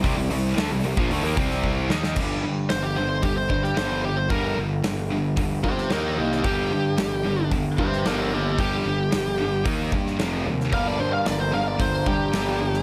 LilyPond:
<<
  \new Staff \with { instrumentName = "Lead electric guitar" } { \time 4/4 \key g \minor \tempo 4 = 112 r1 | r4 c''16 g'16 c''16 c''16 g'16 c''16 c''16 g'16 c''16 c''16 g'16 c''16 | bes'8 r2 <g' c''>8 <g' bes'>8 <ees' g'>8 | g'2 r8 <g' c''>8 <g' bes'>8 <bes g'>8 |
g'2 r2 | f''16 d''16 c''16 f''16 d''16 c''16 f''16 d''16 c''8 g'4. | }
  \new Staff \with { instrumentName = "Overdriven electric guitar" } { \clef bass \time 4/4 \key g \minor <c g>16 <c g>16 <c g>8 <d a>16 <c g>16 <c g>16 <bes, f>16 <d a>16 <ees bes>16 <c g c'>4 <ees bes ees'>8 | r1 | r1 | r1 |
r1 | <g, d g bes d' bes'>4. <g, d g bes d' bes'>2~ <g, d g bes d' bes'>8 | }
  \new Staff \with { instrumentName = "Distorted electric guitar" } { \clef bass \time 4/4 \key g \minor <c g>16 <c g>16 <c g>8 <d a>16 <c g>16 <c g>16 <bes, f>16 <d a>16 <ees bes>16 <c g c'>4 <ees bes ees'>8 | <g, d g>8 <g, d>8 <g, d>8 <g, d>8 <g, d>8 <g, d>8 <g, d g>8 <g, d>8 | <g, d g>8 <g, d>8 <g, d>8 <g, d>8 <g, d>8 <g, d>8 <ees bes ees'>8 <ees bes>8 | <g, d g>8 <g, d>8 <g, d>8 <g, d>8 <g, d>8 <g, d>8 <g, d g>8 <g, d>8 |
<g, d g>8 <g, d>8 <g, d>8 <g, d>8 <ees bes ees'>8 <ees bes>8 <f, c f>8 <f, c>8 | <g, d g>8 <g, d>8 <g, d>8 <g, d>8 <g, d>8 <g, d>8 <g, d g>8 <g, d>8 | }
  \new Staff \with { instrumentName = "Distorted electric guitar" } { \clef bass \time 4/4 \key g \minor <c g>16 <c g>16 <c g>8 <d a>16 <c g>16 <c g>16 <bes, f>16 <d a>16 <ees bes>16 <c g c'>4 <ees bes ees'>8 | <g, d g>8 <g, d>8 <g, d>8 <g, d>8 <g, d>8 <g, d>8 <g, d g>8 <g, d>8 | <g, d g>8 <g, d>8 <g, d>8 <g, d>8 <g, d>8 <g, d>8 <ees bes ees'>8 <ees bes>8 | <g, d g>8 <g, d>8 <g, d>8 <g, d>8 <g, d>8 <g, d>8 <g, d g>8 <g, d>8 |
<g, d g>8 <g, d>8 <g, d>8 <g, d>8 <ees bes ees'>8 <ees bes>8 <f, c f>8 <f, c>8 | <g, d g>8 <g, d>8 <g, d>8 <g, d>8 <g, d>8 <g, d>8 <g, d g>8 <g, d>8 | }
  \new Staff \with { instrumentName = "Picked electric bass" } { \clef bass \time 4/4 \key g \minor c,16 c,16 c,8 d,16 c,16 c,16 bes,,16 d,16 ees,16 c,4 ees,8 | g,,8 g,8 g,,8 g,,8 g,,8 g,8 g,,4 | g,,8 g,,8 g,,4 g,,8 g,,8 ees,8 c,8 | g,,8 g,8 g,,8 g,,8 g,,8 g,8 g,,4 |
g,,8 g,,8 g,,4 ees,8 g,8 f,,8 ees,8 | g,,8 g,8 g,,8 g,,8 g,,8 g,8 g,,4 | }
  \new DrumStaff \with { instrumentName = "Drums" } \drummode { \time 4/4 <hho bd>8 hho8 sn8 hho16 bd16 hho8 <hho bd>16 sn16 bd8 sn16 sn16 | <cymc bd>4 <hho sn>4 <hho bd>8 bd16 sn16 <hho sn>4 | <hho bd>4 <hho sn>4 <hho bd>8 bd16 sn16 <hho sn>8. sn16 | <hho bd>4 <hho sn>4 <hho bd>8 bd16 sn16 <hho sn>4 |
<hho bd>4 <hho sn>4 <hho bd>8 bd16 sn16 <hho sn>8. sn16 | <hho bd>4 <hho sn>4 <hho bd>8 bd8 <hho sn>8. sn16 | }
>>